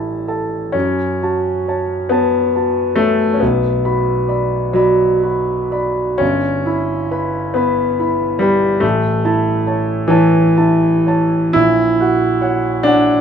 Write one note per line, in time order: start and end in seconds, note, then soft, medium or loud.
0.00 0.69 A1 soft
0.00 0.25 C#4 medium
0.00 0.76 E4 soft
0.00 0.28 A4 soft
0.00 0.28 A5 soft
0.28 0.71 A4 soft
0.28 0.71 A5 soft
0.72 3.37 F#2 soft
0.72 2.11 C#4 medium
1.22 1.64 F#4 soft
1.22 1.64 A5 soft
1.68 2.08 C#5 soft
1.68 2.08 A5 soft
2.09 2.97 B3 medium
2.09 2.51 C#5 soft
2.09 2.51 A5 soft
2.55 2.94 F#4 soft
2.55 2.94 A5 soft
2.96 3.32 A3 medium
2.96 3.37 C#5 soft
2.96 3.37 A5 soft
3.34 3.41 C#4 soft
3.40 6.17 B1 soft
3.40 4.73 B3 medium
3.84 4.24 F#4 soft
3.84 4.24 B5 soft
4.28 4.70 D5 soft
4.28 4.70 B5 soft
4.73 6.20 F#3 medium
4.73 5.19 D5 soft
4.73 5.19 B5 soft
5.23 5.68 F#4 soft
5.23 5.69 B5 soft
5.71 6.17 D5 soft
5.71 6.17 B5 soft
6.18 8.79 G1 soft
6.18 7.54 C#4 medium
6.66 7.07 E4 soft
6.66 7.07 B5 soft
7.11 7.52 B4 soft
7.11 7.52 B5 soft
7.54 8.40 B3 medium
7.54 7.95 B4 soft
7.54 7.95 B5 soft
7.99 8.37 E4 soft
7.99 8.38 B5 soft
8.39 8.82 G3 medium
8.39 8.79 B4 soft
8.39 8.79 B5 soft
8.80 11.51 A1 soft
8.80 10.08 A3 medium
9.25 9.63 E4 soft
9.25 9.63 A5 medium
9.67 10.06 C#5 soft
9.67 10.06 A5 soft
10.08 11.54 E3 medium
10.08 10.53 C#5 soft
10.08 10.53 A5 soft
10.58 11.03 E4 soft
10.58 11.03 A5 soft
11.07 11.51 C#5 soft
11.07 11.52 A5 soft
11.53 13.21 A#1 soft
11.53 12.83 E4 medium
12.00 12.38 F#4 soft
12.00 12.38 F#5 soft
12.41 12.80 C#5 soft
12.41 12.80 F#5 medium
12.83 13.21 D4 medium
12.83 13.21 C#5 soft
12.83 13.21 F#5 medium